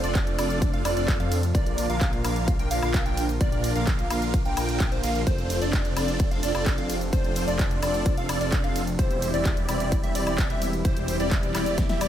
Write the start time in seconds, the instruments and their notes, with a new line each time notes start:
Already playing: analog synth pad C3 F3 A3 D4
0.03 detuned saw bass F1, supersaw synth C4 D4 F4 A4 D5, digital synth lead D5, closed hi-hat, cabasa
0.15 kick, clap, closed hi-hat, ride, cabasa
0.27 closed hi-hat, cabasa
0.38 detuned saw bass F1, supersaw synth C4 D4 F4 A4 D5, digital synth lead D5, open hi-hat, ride, cabasa, high woodblock
0.50 closed hi-hat, cabasa
0.62 kick, closed hi-hat, ride, cabasa
0.73 detuned saw bass F1, supersaw synth C4 D4 F4 A4 F5, digital synth lead F5, closed hi-hat, cabasa
0.85 detuned saw bass F1, supersaw synth C4 D4 F4 A4 D5, digital synth lead D5, open hi-hat, ride, cabasa, high woodblock
0.97 detuned saw bass F1, supersaw synth C4 D4 F4 A4 D5, digital synth lead D5, closed hi-hat, cabasa
1.08 kick, clap, closed hi-hat, ride, cabasa
1.20 detuned saw bass F2, supersaw synth C4 D4 F4 A4 F5, digital synth lead F5, closed hi-hat, cabasa
1.32 open hi-hat, ride, cabasa
1.43 closed hi-hat, cabasa
1.55 detuned saw bass A#1, analog synth pad D3 A#3 F4, supersaw synth A#3 D4 F4 A#4 D5, digital synth lead D5, kick, closed hi-hat, ride, cabasa
1.66 closed hi-hat, cabasa
1.78 open hi-hat, ride, cabasa
1.89 detuned saw bass A#1, supersaw synth A#3 D4 F4 A#4 F5, digital synth lead F5, closed hi-hat, cabasa
2.01 kick, clap, closed hi-hat, ride, cabasa
2.13 closed hi-hat, cabasa
2.24 detuned saw bass A#1, supersaw synth A#3 D4 F4 A#4 F5, digital synth lead F5, open hi-hat, ride, cabasa, high woodblock
2.36 closed hi-hat, cabasa
2.48 kick, closed hi-hat, ride, cabasa
2.59 detuned saw bass A#1, supersaw synth A#3 D4 F4 A#4 G5, digital synth lead G5, closed hi-hat, cabasa
2.71 detuned saw bass A#1, supersaw synth A#3 D4 F4 A#4 F5, digital synth lead F5, open hi-hat, ride, cabasa
2.83 detuned saw bass A#1, supersaw synth A#3 D4 F4 A#4 F5, digital synth lead F5, closed hi-hat, cabasa, high woodblock
2.94 kick, clap, closed hi-hat, ride, cabasa
3.06 detuned saw bass A#1, supersaw synth A#3 D4 F4 A#4 G5, digital synth lead G5, closed hi-hat, cabasa
3.17 open hi-hat, ride, cabasa
3.29 closed hi-hat, cabasa
3.41 detuned saw bass A#1, supersaw synth A#3 D4 F4 A#4 D5, digital synth lead D5, kick, closed hi-hat, ride, cabasa
3.52 closed hi-hat, cabasa
3.64 open hi-hat, ride, cabasa
3.75 detuned saw bass A#1, supersaw synth A#3 D4 F4 A#4 F5, digital synth lead F5, closed hi-hat, cabasa
3.87 kick, clap, closed hi-hat, ride, cabasa
3.99 closed hi-hat, cabasa
4.10 detuned saw bass A#1, supersaw synth A#3 D4 F4 A#4 F5, digital synth lead F5, open hi-hat, ride, cabasa, high woodblock
4.22 closed hi-hat, cabasa
4.34 kick, closed hi-hat, ride, cabasa
4.45 detuned saw bass A#1, supersaw synth A#3 D4 F4 A#4 G5, digital synth lead G5, closed hi-hat, cabasa
4.57 detuned saw bass A#1, supersaw synth A#3 D4 F4 A#4 G5, digital synth lead G5, open hi-hat, ride, cabasa, high woodblock
4.69 closed hi-hat, cabasa
4.80 kick, clap, closed hi-hat, ride, cabasa
4.92 detuned saw bass A#1, supersaw synth A#3 D4 F4 A#4 C5, digital synth lead C5, closed hi-hat, cabasa
5.03 detuned saw bass A#1, supersaw synth A#3 D4 F4 A#4 F5, digital synth lead F5, open hi-hat, ride, cabasa
5.15 closed hi-hat, cabasa
5.27 detuned saw bass F1, analog synth pad C3 F3 A3 D4, supersaw synth C4 D4 F4 A4 C5, digital synth lead C5, kick, closed hi-hat, ride, cabasa
5.38 closed hi-hat, cabasa
5.50 open hi-hat, ride, cabasa
5.61 detuned saw bass F1, supersaw synth C4 D4 F4 A4 D5, digital synth lead D5, closed hi-hat, cabasa
5.73 kick, clap, closed hi-hat, ride, cabasa
5.85 closed hi-hat, cabasa
5.96 detuned saw bass F1, supersaw synth C4 D4 F4 A4 D5, digital synth lead D5, open hi-hat, ride, cabasa, high woodblock
6.08 closed hi-hat, cabasa
6.20 kick, closed hi-hat, ride, cabasa
6.31 detuned saw bass F1, supersaw synth C4 D4 F4 A4 F5, digital synth lead F5, closed hi-hat, cabasa
6.43 detuned saw bass F1, supersaw synth C4 D4 F4 A4 D5, digital synth lead D5, open hi-hat, ride, cabasa
6.55 detuned saw bass F1, supersaw synth C4 D4 F4 A4 D5, digital synth lead D5, closed hi-hat, cabasa, high woodblock
6.66 kick, clap, closed hi-hat, ride, cabasa
6.78 detuned saw bass F1, supersaw synth C4 D4 F4 A4 F5, digital synth lead F5, closed hi-hat, cabasa
6.90 open hi-hat, ride, cabasa
7.01 closed hi-hat, cabasa
7.13 detuned saw bass F1, supersaw synth C4 D4 F4 A4 C5, digital synth lead C5, kick, closed hi-hat, ride, cabasa
7.24 closed hi-hat, cabasa
7.36 open hi-hat, ride, cabasa
7.48 detuned saw bass F1, supersaw synth C4 D4 F4 A4 D5, digital synth lead D5, closed hi-hat, cabasa
7.59 kick, clap, closed hi-hat, ride, cabasa
7.71 closed hi-hat, cabasa
7.83 detuned saw bass F1, supersaw synth C4 D4 F4 A4 D5, digital synth lead D5, open hi-hat, ride, cabasa, high woodblock
7.94 closed hi-hat, cabasa
8.06 kick, closed hi-hat, ride, cabasa
8.17 detuned saw bass F1, supersaw synth C4 D4 F4 A4 F5, digital synth lead F5, closed hi-hat, cabasa
8.29 detuned saw bass F1, supersaw synth C4 D4 F4 A4 D5, digital synth lead D5, open hi-hat, ride, cabasa, high woodblock
8.41 detuned saw bass F1, supersaw synth C4 D4 F4 A4 D5, digital synth lead D5, closed hi-hat, cabasa
8.52 kick, clap, closed hi-hat, ride, cabasa
8.64 detuned saw bass F1, supersaw synth C4 D4 F4 A4 F5, digital synth lead F5, closed hi-hat, cabasa
8.76 open hi-hat, ride, cabasa
8.87 closed hi-hat, cabasa
8.99 detuned saw bass E1, analog synth pad E3 G3 E4, supersaw synth G3 C4 E4 G4 C5, digital synth lead C5, kick, closed hi-hat, ride, cabasa
9.11 closed hi-hat, cabasa
9.22 open hi-hat, ride, cabasa
9.34 detuned saw bass E1, supersaw synth G3 C4 E4 G4 D5, digital synth lead D5, closed hi-hat, cabasa
9.45 kick, clap, closed hi-hat, ride, cabasa
9.57 closed hi-hat, cabasa
9.69 detuned saw bass E1, supersaw synth G3 C4 E4 G4 D5, digital synth lead D5, open hi-hat, ride, cabasa, high woodblock
9.80 closed hi-hat, cabasa
9.92 kick, closed hi-hat, ride, cabasa
10.03 detuned saw bass E1, supersaw synth G3 C4 E4 G4 E5, digital synth lead E5, closed hi-hat, cabasa
10.15 detuned saw bass E1, supersaw synth G3 C4 E4 G4 D5, digital synth lead D5, open hi-hat, ride, cabasa
10.27 detuned saw bass E1, supersaw synth G3 C4 E4 G4 D5, digital synth lead D5, closed hi-hat, cabasa, high woodblock
10.38 kick, clap, closed hi-hat, ride, cabasa
10.50 detuned saw bass E1, supersaw synth G3 C4 E4 G4 E5, digital synth lead E5, closed hi-hat, cabasa
10.62 open hi-hat, ride, cabasa
10.73 closed hi-hat, cabasa
10.85 detuned saw bass E1, supersaw synth G3 C4 E4 G4 C5, digital synth lead C5, kick, closed hi-hat, ride, cabasa
10.97 closed hi-hat, cabasa
11.08 open hi-hat, ride, cabasa
11.20 detuned saw bass E1, supersaw synth G3 C4 E4 G4 D5, digital synth lead D5, closed hi-hat, cabasa
11.31 kick, clap, closed hi-hat, ride, cabasa
11.43 closed hi-hat, cabasa
11.55 detuned saw bass E1, supersaw synth G3 C4 E4 G4 D5, digital synth lead D5, clap, open hi-hat, ride, cabasa, high woodblock
11.66 closed hi-hat, cabasa
11.78 kick, snare, closed hi-hat, ride, cabasa
11.89 detuned saw bass E1, supersaw synth G3 C4 E4 G4 E5, digital synth lead E5, snare, closed hi-hat, cabasa
12.01 detuned saw bass E1, supersaw synth G3 C4 E4 G4 D5, digital synth lead D5, open hi-hat, ride, cabasa, high woodblock